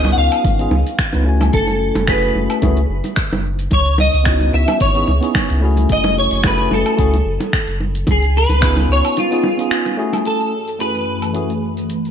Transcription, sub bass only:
0.00 0.14 C#2 medium
0.17 0.29 C#2 medium
0.44 0.67 G#1 loud
0.71 0.84 C#2 medium
1.14 1.50 C#2 loud
1.53 1.91 F#1 medium
1.96 2.32 F#1 medium
2.35 2.47 F#1 medium
2.62 2.85 C#2 loud
2.89 3.02 F#1 medium
3.31 3.68 F#1 loud
3.71 4.09 C#2 medium
4.14 4.50 C#2 medium
4.54 4.66 C#2 medium
4.81 5.04 G#1 loud
5.08 5.20 C#2 medium
5.50 5.86 C#2 loud
5.90 6.28 F#1 medium
6.32 6.68 F#1 medium
6.71 6.84 F#1 medium
6.98 7.22 C#2 loud
7.25 7.38 F#1 medium
7.68 8.04 F#1 loud
8.08 8.46 C#2 medium
8.49 8.86 C#2 medium
8.89 9.02 C#2 medium

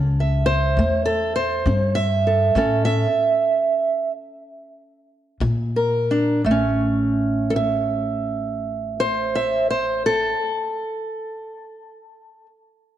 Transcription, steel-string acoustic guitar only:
0.00 0.42 C#4 medium
0.00 0.45 A4 medium
0.20 1.94 E5 medium
0.46 1.05 C5 loud
0.79 1.32 A3 medium
1.05 1.35 A4 medium
1.36 1.96 C5 medium
1.67 2.21 C#4 medium
1.95 2.84 E5 medium
2.27 2.53 A4 soft
2.56 3.05 A3 medium
2.56 3.06 C#4 medium
2.56 3.06 A4 medium
2.85 4.10 E5 loud
5.41 6.03 A#2 medium
5.76 6.41 A#4 medium
6.11 6.41 D4 medium
6.46 10.37 A3 medium
6.51 10.43 C#4 medium
7.50 7.56 A4 medium
7.56 9.34 E5 medium
9.00 9.69 C5 loud
9.35 9.65 E5 medium
9.70 10.06 C5 medium
10.06 12.46 A4 medium

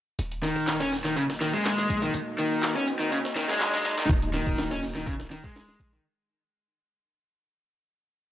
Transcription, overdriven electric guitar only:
0.43 0.79 D#3 medium
0.80 0.90 C#4 medium
1.04 1.15 D#3 medium
1.16 1.23 C#3 loud
1.41 1.52 D#3 medium
1.53 2.01 G#3 medium
2.02 2.12 D#3 medium
2.38 2.74 D#3 medium
2.75 2.86 C#4 medium
2.99 3.10 D#3 medium
3.11 3.18 C#3 loud
3.36 3.47 D#3 medium
3.48 3.96 G#3 medium
3.98 4.08 D#3 medium
4.34 4.69 D#3 medium
4.71 4.81 C#4 medium
4.95 5.05 D#3 medium
5.06 5.13 C#3 loud
5.31 5.42 D#3 medium
5.44 5.91 G#3 medium
5.93 6.03 D#3 medium

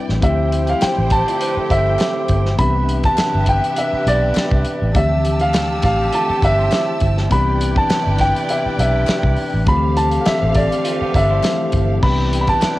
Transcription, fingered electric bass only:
0.09 0.21 A1 medium
0.23 0.73 D2 loud
0.83 muted fingered electric bass stroke soft
0.98 1.23 A1 medium
1.57 muted fingered electric bass stroke soft
1.71 1.95 G1 medium
2.29 2.54 G1 loud
2.59 3.09 C2 loud
3.18 muted fingered electric bass stroke soft
3.35 3.59 G1 medium
3.93 muted fingered electric bass stroke soft
4.07 4.32 B1 loud
4.51 4.63 C2 medium
4.82 4.93 A1 medium
4.95 5.80 D2 loud
5.84 6.09 A1 medium
6.30 muted fingered electric bass stroke soft
6.42 6.68 G1 loud
7.02 7.27 G1 loud
7.31 7.81 C2 loud
7.90 muted fingered electric bass stroke soft
8.07 8.31 G1 medium
8.66 muted fingered electric bass stroke medium
8.79 9.04 B1 medium
9.09 muted fingered electric bass stroke soft
9.24 9.35 C2 medium
9.54 9.65 A1 medium
9.67 10.17 D2 loud
10.27 muted fingered electric bass stroke soft
10.43 10.67 A1 medium
11.01 muted fingered electric bass stroke soft
11.14 11.39 G1 medium
11.73 11.98 G1 loud
12.03 12.53 C2 loud
12.63 muted fingered electric bass stroke soft

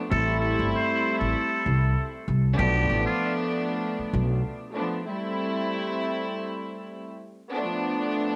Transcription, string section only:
0.10 2.11 G3 loud
0.10 2.11 A3 medium
0.10 2.11 C4 medium
0.10 2.11 E4 loud
2.56 4.57 F3 loud
2.56 4.57 A3 medium
2.56 4.58 B3 medium
2.56 4.58 D4 loud
4.73 5.02 F3 medium
4.73 5.03 A3 medium
4.73 5.03 B3 medium
4.73 5.03 D4 medium
5.05 7.06 G3 medium
5.05 7.06 A3 medium
5.05 7.06 C4 medium
5.05 7.06 E4 loud
7.51 8.36 F3 medium
7.51 8.36 A3 medium
7.51 8.36 B3 medium
7.51 8.36 D4 loud

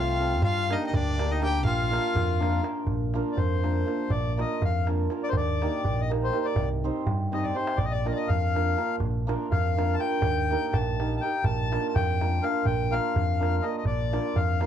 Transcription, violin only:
0.00 0.43 F5 loud
0.44 0.74 F5 loud
0.72 0.86 D#5 medium
0.87 0.96 D#5 medium
0.95 1.33 D5 loud
1.31 1.42 D#5 medium
1.44 1.64 G5 loud
1.65 2.61 F5 loud

